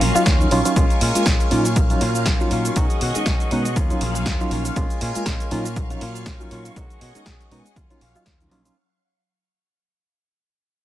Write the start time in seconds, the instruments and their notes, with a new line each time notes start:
Already playing: string machine F#3 F5 C#6
0.01 fingered electric bass A#1, clean electric guitar F#3 A#3 C#4 F4, open hi-hat
0.15 reed electric piano F#3 C#4 D#4 F4, clean electric guitar A#3 C#4 F4, closed hi-hat, shaker
0.26 fingered electric bass D#2, clean electric guitar F#3 A#3 C#4 F4, kick, snare, closed hi-hat, shaker
0.40 reed electric piano F#3 C#4 D#4 F4, shaker
0.51 fingered electric bass A#1, clean electric guitar F#3 A#3 C#4 F4, reed electric piano F#3 C#4 D#4 F4, open hi-hat
0.65 reed electric piano F#3 C#4 D#4 F4, clean electric guitar A#3 C#4 F4, closed hi-hat, shaker
0.76 fingered electric bass A#1, reed electric piano G#3 A#3 C#4 F4, clean electric guitar G#3 C#4 F4, string machine A#4 G#5, kick, closed hi-hat, shaker
0.90 closed hi-hat, shaker
1.01 fingered electric bass A#2, clean electric guitar G#3 C#4 F4, open hi-hat
1.15 reed electric piano G#3 A#3 C#4 F4, muted fingered electric bass stroke, closed hi-hat, shaker
1.26 fingered electric bass A#1, clean electric guitar G#3 C#4, kick, snare, closed hi-hat, shaker
1.40 closed hi-hat, shaker
1.51 fingered electric bass A#2, reed electric piano F#3 C#4 D#4 F4, string machine F#3 F5, clean electric guitar F#3 A#3 C#4 F4, open hi-hat
1.65 clean electric guitar A#3 C#4 F4, closed hi-hat, shaker
1.76 fingered electric bass A#1, kick, closed hi-hat, shaker
1.90 reed electric piano F#3 C#4 D#4 F4, closed hi-hat, shaker
2.01 fingered electric bass A#2, clean electric guitar F#3 A#3 C#4 F4, open hi-hat
2.15 clean electric guitar A#3 C#4 F4, closed hi-hat, shaker
2.26 fingered electric bass A#1, clean electric guitar F#3 A#3 C#4 F4, kick, snare, closed hi-hat, shaker
2.40 reed electric piano F#3 C#4 D#4 F4, shaker
2.51 fingered electric bass A#2, clean electric guitar F#3 A#3 C#4 F4, open hi-hat
2.65 clean electric guitar A#3 C#4 F4, closed hi-hat, shaker
2.76 fingered electric bass B1, clean electric guitar D#3 G#3 C#4 F#4, reed electric piano G#3 B3 C#4 D#4, string machine G#4 D#5, kick, closed hi-hat, shaker
2.90 closed hi-hat, shaker
3.01 fingered electric bass B2, clean electric guitar D#3 G#3 C#4 F#4, open hi-hat
3.15 reed electric piano G#3 B3 C#4 D#4, muted fingered electric bass stroke, closed hi-hat, shaker
3.26 fingered electric bass B1, clean electric guitar D#3 G#3 C#4 F#4, kick, snare, closed hi-hat, shaker
3.40 closed hi-hat, shaker
3.51 fingered electric bass B2, clean electric guitar D#3 G#3 C#4 F#4, reed electric piano G#3 B3 C#4 D#4, open hi-hat
3.65 clean electric guitar G#3 C#4 F#4, closed hi-hat, shaker
3.76 fingered electric bass D#2, clean electric guitar F#3 A#3 C#4 F4, string machine F#3 F5, kick, closed hi-hat, shaker
3.90 reed electric piano F#3 C#4 D#4 F4, muted fingered electric bass stroke, closed hi-hat, shaker
4.01 fingered electric bass A#1, clean electric guitar F#3 A#3 C#4 F4, open hi-hat
4.15 clean electric guitar A#3 C#4 F4, closed hi-hat, shaker
4.26 fingered electric bass D#2, clean electric guitar F#3 A#3 F4, kick, snare, closed hi-hat, shaker
4.40 reed electric piano F#3 C#4 D#4 F4, shaker
4.51 fingered electric bass A#1, clean electric guitar F#3 A#3 C#4 F4, open hi-hat
4.65 clean electric guitar A#3 C#4 F4, closed hi-hat, shaker
4.76 fingered electric bass A#1, clean electric guitar G#3 C#4 F4, reed electric piano G#3 A#3 C#4 F4, string machine A#4 G#5, kick, closed hi-hat, shaker
4.90 closed hi-hat, shaker
5.01 fingered electric bass A#2, clean electric guitar G#3 C#4 F4, open hi-hat
5.15 reed electric piano G#3 A#3 C#4 F4, muted fingered electric bass stroke, closed hi-hat, shaker
5.26 fingered electric bass A#1, clean electric guitar G#3 C#4 F4, kick, snare, closed hi-hat, shaker
5.40 closed hi-hat, shaker
5.51 fingered electric bass A#2, clean electric guitar F#3 A#3 C#4 F4, string machine F#3 F5 C#6, reed electric piano F#3 C#4 D#4 F4, open hi-hat
5.65 clean electric guitar A#3 C#4 F4, closed hi-hat, shaker
5.76 fingered electric bass A#1, kick, closed hi-hat, shaker
5.90 reed electric piano F#3 C#4 D#4 F4, closed hi-hat, shaker
6.01 fingered electric bass A#2, clean electric guitar F#3 A#3 C#4 F4, open hi-hat
6.15 clean electric guitar A#3 C#4 F4, closed hi-hat, shaker
6.26 fingered electric bass A#1, clean electric guitar F#3 A#3 C#4 F4, kick, snare, closed hi-hat, shaker
6.40 reed electric piano F#3 C#4 D#4 F4, shaker
6.51 fingered electric bass A#2, clean electric guitar F#3 A#3 C#4 F4, open hi-hat
6.65 clean electric guitar A#3 C#4 F4, closed hi-hat, shaker
6.76 fingered electric bass B1, clean electric guitar D#3 G#3 C#4 F#4, reed electric piano G#3 B3 C#4 D#4, string machine G#4 D#5, kick, closed hi-hat, shaker
6.90 closed hi-hat, shaker
7.00 fingered electric bass B2, clean electric guitar D#3 G#3 C#4 F#4, open hi-hat
7.15 reed electric piano G#3 B3 C#4 D#4, muted fingered electric bass stroke, closed hi-hat, shaker
7.26 fingered electric bass B1, clean electric guitar D#3 C#4 F#4, kick, snare, closed hi-hat, shaker
7.41 closed hi-hat, shaker
7.50 fingered electric bass B2, clean electric guitar D#3 G#3 C#4 F#4, reed electric piano G#3 B3 C#4 D#4, open hi-hat
7.65 clean electric guitar G#3 C#4 F#4, closed hi-hat, shaker
7.76 fingered electric bass D#2, clean electric guitar F#3 A#3 C#4 F4, string machine F#3 F5, kick, closed hi-hat, shaker
7.90 reed electric piano F#3 C#4 D#4 F4, closed hi-hat, shaker
8.01 fingered electric bass A#1, clean electric guitar F#3 A#3 C#4 F4, open hi-hat
8.15 reed electric piano F#3 C#4 D#4 F4, clean electric guitar C#4 F4, closed hi-hat, shaker
8.26 fingered electric bass D#2, clean electric guitar F#3 A#3 C#4 F4, kick, snare, closed hi-hat, shaker
8.40 reed electric piano F#3 C#4 D#4 F4, closed hi-hat, shaker
8.51 fingered electric bass A#1, clean electric guitar F#3 A#3 C#4 F4, reed electric piano F#3 C#4 D#4 F4, open hi-hat
8.65 reed electric piano F#3 C#4 D#4 F4, clean electric guitar A#3 C#4 F4, closed hi-hat, shaker